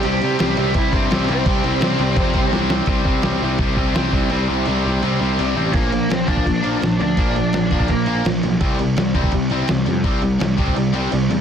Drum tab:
CC |x-x-x-x-x-x-x-x-|x-x-x-x-x-x-----|x---x---x---x---|x---x---x---x---|
SD |----o-------o---|----o-------o-o-|----o-------o---|----------------|
BD |--------o-o-----|o-------o-o-----|o-o-----o-o---o-|----------------|

CC |x-x-x-x-x-x-x-x-|x-x-x-x-x-x-x-x-|x-x-x-x-x-x-x-x-|x-x-x-x-x-x-x-x-|
SD |----o-------o---|----o-------o---|----o-------o---|----o-----------|
BD |o-----ooo-------|o-----ooo-------|o-----ooo-------|o-----oo--------|